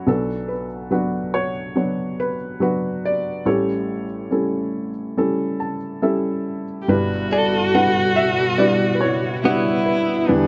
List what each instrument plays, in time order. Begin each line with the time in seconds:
0.06 upright piano B1 B2 F#3 B3 D4 F#4 A4 B4
0.48 upright piano B4
0.91 upright piano F#3 B3 D4 F#4 B4
1.34 upright piano F#4 C#5
1.75 upright piano F#3 B3 D4 C#5
2.20 upright piano B4
2.60 upright piano F#3 B3 D4 F#4 B4
3.05 upright piano D5
3.45 upright piano A1 A2 G3 C#4 E4 G4 A4 C#5
4.31 upright piano G3 C#4 E4 A4
5.17 upright piano G3 C#4 E4 A4
5.60 upright piano A5
6.02 upright piano G3 C#4 E4 A4 E5
6.82 viola G4
6.88 upright piano G1 G2 G3 D4 E4 B4, analog synth pad B2 G3 E4, viola F#4
7.32 clean electric guitar A4, upright piano D5
7.74 upright piano G3 D4 E4 B4 F#5
8.16 upright piano E5
8.58 upright piano G3 D4 E4 B4 D5
8.95 upright piano B4
9.01 upright piano E4 C#5
9.43 upright piano G3 D4 E4 F#4, clean electric guitar B3, viola E4
9.86 upright piano B4
10.28 upright piano E2 E3 G3 D4 E4 G4 B4, analog synth pad D3 G3, viola D4